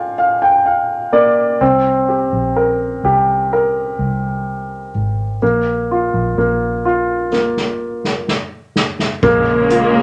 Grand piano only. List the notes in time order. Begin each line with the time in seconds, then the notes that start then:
Already playing: A#3 F4 G#4 D5 F5 G5 G#5
0.18 F5
0.42 G5
0.66 F5
1.13 A#3 D5
1.61 C4
2.09 G4
2.56 A#4
3.05 G4
3.53 A#4
5.42 A#3
5.91 F4
6.38 A#3
6.85 F4
7.32 A#3
9.23 A#3
9.71 F4